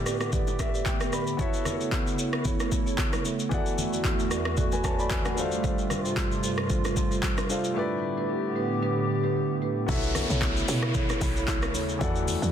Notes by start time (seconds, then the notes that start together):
Already playing: A2 D3 A3 B3 E4 G4 B4 D5
0.06 G4 B4 D5, cross-stick, shaker
0.21 cross-stick, high bongo, shaker
0.32 G4 B4 D5, kick, low conga, shaker
0.47 low bongo, shaker
0.59 E5, kick, cross-stick, low bongo, shaker
0.74 G4 B4 D5, shaker
0.86 G5, kick, clap, high bongo, shaker
1.00 cross-stick, shaker
1.12 G4 B4 D5 B5, cross-stick, shaker
1.27 shaker
1.37 C#3 A3 B3 E4 F#4 A4 C#5, kick, low conga, shaker
1.42 E5
1.54 shaker
1.65 cross-stick, low conga, shaker
1.80 B3 E4 A4 C#5, shaker
1.92 kick, clap, high bongo, shaker
2.07 shaker
2.18 B3 E4 A4 C#5, shaker
2.33 cross-stick
2.45 B3 E4 A4 C#5, kick, low conga, shaker
2.60 cross-stick, low bongo, shaker
2.72 kick, low bongo, shaker
2.86 B3 E4 A4 C#5, shaker
2.98 kick, clap, high bongo, shaker
3.13 cross-stick, low bongo, shaker
3.25 B3 E4 A4 C#5, low bongo, shaker
3.39 shaker
3.49 E2 D3 E3 E4 F#4 G#4 A4 D5, kick, low conga, shaker
3.54 A4 F#5
3.66 shaker
3.78 low conga, shaker
3.92 F#4 A4 D5, shaker
4.04 kick, clap, high bongo, shaker
4.19 shaker
4.31 F#4 A4 D5, cross-stick, shaker
4.45 cross-stick
4.57 F#4 A4 D5, kick, low conga, shaker
4.72 B4 G#5, low bongo, shaker
4.84 C#5 A5, kick, cross-stick, low bongo, shaker
4.99 F#4 A4 D5 B5, shaker
5.11 B4, kick, clap, high bongo, shaker
5.25 A4 F#5, cross-stick, low bongo, shaker
5.35 G2 C3 G3 D4 F4 A4 C5, low bongo, shaker
5.40 F5
5.52 shaker
5.64 G3 F4 A4 C5, kick, low conga, shaker
5.78 shaker
5.90 cross-stick, low conga, shaker
6.05 G3 F4 A4 C5, shaker
6.17 kick, clap, high bongo, shaker
6.32 shaker
6.43 G3 F4 A4 C5, shaker
6.58 cross-stick
6.69 G3 F4 A4 C5, kick, low conga, shaker
6.84 cross-stick, low bongo, shaker
6.96 kick, low bongo, shaker
7.11 G3 F4 A4 C5, shaker
7.23 kick, clap, high bongo, shaker
7.37 cross-stick, low bongo, shaker
7.49 G3 D4 F4 A4 C5 F5, low bongo, shaker
7.64 shaker
7.74 A2 D3 A3 B3 D4 E4 G4 B4
7.79 D5
8.17 A3 D4 G4 B4
8.56 A3 D4 G4 B4
8.82 A3 D4 G4 B4
9.23 A3 D4 G4 B4
9.62 A3 D4 G4 B4
9.86 B1 C#3 A3 B3 E4 F#4 A4 C#5, kick, downlifter, low conga, shaker
9.91 E5
10.03 shaker
10.15 cross-stick, open hi-hat, low conga, shaker
10.30 B1 E4 A4 C#5, shaker
10.42 kick, clap, high bongo, shaker
10.57 shaker
10.68 B2 E4 A4 C#5, open hi-hat, shaker
10.83 cross-stick, high bongo
10.94 E4 A4 C#5, kick, low conga, shaker
11.09 cross-stick, low bongo, shaker
11.21 B1, kick, open hi-hat, high bongo, low bongo, shaker
11.36 E4 A4 C#5, shaker
11.48 kick, clap, high bongo, shaker
11.62 cross-stick, shaker
11.74 D#2 E4 A4 C#5, open hi-hat, low bongo, shaker
11.89 shaker
11.99 E2 D3 E3 E4 F#4 A4 D5, kick, low conga, shaker
12.04 F#5
12.16 shaker
12.28 open hi-hat, low conga, shaker
12.42 E2 F#4 A4 D5, shaker